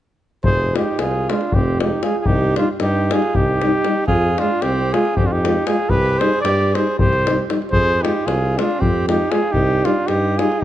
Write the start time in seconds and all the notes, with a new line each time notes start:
0.44 F1 G#4 C5, davul low
0.75 G#3 D#4 F4 G4, davul high
0.98 C2 F4 G#4, davul high
1.30 G#3 D4 F4, davul high
1.41 davul high
1.52 F1 C4 G4, davul low
1.80 G#3 D#4 F4 G4, davul high
2.02 G#3 F4 G#4, davul high
2.19 F4 G#4
2.25 C2 D#4 G4, davul low
2.56 G3 D4 D#4 F4, davul high
2.80 G2 D#4 G4, davul high
3.11 G3 D#4 F4 G#4, davul high
3.22 davul high
3.35 C2 D#4 G4, davul low
3.62 G3 D#4, davul high
3.84 G3 D#4, davul high
4.07 F2 F4 G#4, davul low
4.38 G#3 D4 F4, davul high
4.62 C2 C4 G4, davul high
4.93 G#3 F4 G#4, davul high
5.05 davul high
5.16 F2 C4 G4, davul low
5.24 D4 F4
5.32 D#4 G4
5.45 G#3 F4, davul high
5.67 G#3 F4 G#4, davul high
5.89 C2 G4 B4, davul low
6.06 davul high
6.19 G3 D#4 G#4 C5, davul high
6.34 davul high
6.41 G2 G4 D5, davul high
6.61 davul high
6.74 G3 D#4 G#4 C5, davul high
6.87 davul high
6.99 C2 G4 C5, davul low
7.13 davul high
7.27 G3 D#4, davul high
7.49 G3 D#4, davul high
7.62 davul high
7.72 F2 G#4 C5, davul low
8.03 G#3 D#4 F4 G4, davul high
8.25 C2 F4 G#4, davul high
8.57 G#3 D4 F4, davul high
8.71 davul high
8.80 F2 C4 G4, davul low
9.08 G#3 D#4 F4 G4, davul high
9.31 G#3 F4 G#4, davul high
9.52 C2 D#4 G4, davul low
9.84 G3 D4 D#4 F4, davul high
10.07 G2 D#4 G4, davul high
10.36 G3 D#4 F4 G#4, davul high
10.52 davul high
10.59 D#4